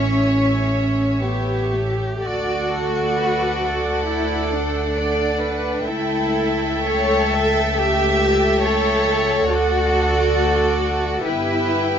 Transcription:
0.00 1.97 A1 medium
0.00 1.18 C#4 medium
0.00 1.70 C#5 medium
0.00 2.00 C#5 soft
0.00 2.00 E5 soft
1.21 1.73 B3 medium
1.21 2.22 G4 medium
1.73 2.22 A3 soft
2.21 5.82 D2 soft
2.21 5.83 A3 soft
2.21 4.07 F#4 medium
2.21 5.83 A4 medium
2.21 5.82 D5 soft
2.21 2.67 D5 medium
2.21 5.82 F#5 soft
2.69 3.16 A4 soft
3.18 3.62 B4 soft
3.64 4.97 A4 medium
4.07 4.51 E4 medium
4.51 5.86 D4 medium
4.97 5.41 D5 medium
5.41 5.86 B4 soft
5.86 9.44 C#2 medium
5.86 11.22 A3 medium
5.86 6.86 E4 medium
5.86 11.22 A4 medium
5.86 6.86 A4 medium
5.86 9.44 E5 medium
5.86 9.44 G5 medium
6.86 7.74 A4 medium
6.86 7.31 C#5 medium
7.33 7.75 E5 medium
7.76 8.63 G4 medium
7.76 8.61 E5 medium
8.62 9.48 A4 medium
8.62 9.46 C#5 medium
9.48 11.26 D2 medium
9.48 11.22 F#4 medium
9.48 11.26 A4 medium
9.48 11.23 D5 medium
9.48 11.23 F#5 soft
11.26 11.99 G1 medium
11.26 11.99 B3 medium
11.26 11.99 E4 medium
11.26 11.99 G4 medium
11.26 11.99 B4 medium
11.26 11.99 E5 medium
11.26 11.99 G5 soft

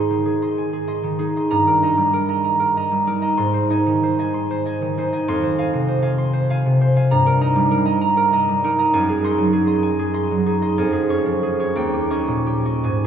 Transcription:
0.00 1.54 G#2 soft
0.00 1.18 D#4 soft
0.00 0.24 G#4 soft
0.00 0.41 D#5 soft
0.00 0.57 G#5 soft
0.00 0.41 C6 medium
0.10 1.02 D#3 soft
0.25 0.72 G#4 soft
0.42 0.86 D#5 soft
0.42 0.87 C6 soft
0.58 1.54 G#5 soft
0.73 1.17 G#4 soft
0.88 1.35 D#5 soft
0.88 1.36 C6 soft
1.03 1.53 D#3 soft
1.19 1.82 D#4 soft
1.19 1.53 G#4 soft
1.36 1.82 D#5 soft
1.36 1.54 C6 soft
1.50 3.42 G2 soft
1.50 1.82 A#5 medium
1.67 2.12 A#4 soft
1.83 3.06 D#4 soft
1.83 2.28 D#5 soft
1.83 2.28 A#5 soft
1.97 2.90 G3 soft
2.13 2.58 A#4 soft
2.29 2.75 D#5 soft
2.29 2.43 A#5 soft
2.44 2.76 A#5 soft
2.60 3.06 A#4 soft
2.77 3.21 D#5 soft
2.77 3.21 A#5 soft
2.92 3.41 G3 soft
3.07 3.69 D#4 soft
3.07 3.41 A#4 soft
3.22 3.69 D#5 soft
3.22 3.41 A#5 soft
3.37 5.31 G#2 soft
3.37 4.33 C6 medium
3.54 4.02 C5 soft
3.70 4.97 D#4 soft
3.70 4.18 D#5 soft
3.70 4.18 G#5 soft
3.86 4.80 D#3 soft
4.03 4.49 C5 soft
4.19 4.65 D#5 soft
4.19 4.65 G#5 soft
4.34 5.27 C6 medium
4.51 4.97 C5 soft
4.66 5.12 D#5 soft
4.66 5.12 G#5 soft
4.82 5.31 D#3 soft
4.98 5.31 D#4 soft
4.98 5.42 C5 medium
5.13 5.31 D#5 soft
5.13 5.58 G#5 soft
5.28 7.13 F2 medium
5.28 6.17 C6 medium
5.43 5.87 C5 soft
5.58 6.01 F5 soft
5.58 6.01 G#5 soft
5.73 6.65 C3 soft
5.89 6.32 C5 soft
6.02 6.49 F5 soft
6.02 6.50 G#5 soft
6.18 7.13 C6 medium
6.33 6.80 C5 medium
6.50 6.95 F5 soft
6.50 6.95 G#5 medium
6.66 7.14 C3 soft
6.81 7.14 C5 medium
6.96 7.14 F5 soft
6.96 7.14 G#5 soft
7.11 8.95 G2 medium
7.11 7.40 A#5 medium
7.26 7.70 A#4 medium
7.41 8.63 D#4 soft
7.41 7.84 D#5 soft
7.41 7.85 A#5 medium
7.56 8.48 G3 medium
7.71 8.16 A#4 medium
7.85 8.32 D#5 soft
7.85 8.00 A#5 soft
8.01 8.32 A#5 medium
8.17 8.63 A#4 medium
8.33 8.78 D#5 soft
8.33 8.78 A#5 medium
8.49 8.96 G3 soft
8.64 9.23 D#4 medium
8.64 8.96 A#4 medium
8.79 9.23 D#5 medium
8.79 8.96 A#5 medium
8.93 10.80 F#2 medium
8.93 9.82 G#5 medium
9.09 9.52 G#4 medium
9.24 10.45 D#4 soft
9.24 9.66 D#5 soft
9.24 9.66 C6 medium
9.38 10.30 F#3 soft
9.53 9.98 G#4 soft
9.67 10.13 D#5 soft
9.67 10.13 C6 medium
9.83 10.77 G#5 medium
9.99 10.45 G#4 medium
10.14 10.61 D#5 soft
10.14 10.61 C6 medium
10.31 10.80 F#3 soft
10.46 10.80 D#4 soft
10.46 10.91 G#4 soft
10.62 10.80 D#5 soft
10.62 10.80 C6 soft
10.78 11.79 F2 medium
10.78 11.79 G#5 medium
10.92 11.42 G#4 medium
11.09 12.09 C#4 soft
11.09 11.59 C#5 soft
11.09 11.59 C#6 medium
11.26 11.78 F3 soft
11.43 11.78 G#4 soft
11.60 12.88 C#5 soft
11.60 12.10 C#6 soft
11.76 12.88 D#2 medium
11.76 12.88 G5 medium
11.94 12.45 G4 soft
12.10 12.88 C#4 soft
12.10 12.64 D#5 soft
12.10 12.64 C#6 medium
12.27 12.87 A#2 soft
12.46 12.88 G4 soft
12.65 13.07 D#5 soft
12.65 12.88 C#6 soft
12.84 13.07 G#2 medium
12.84 13.07 G#5 soft

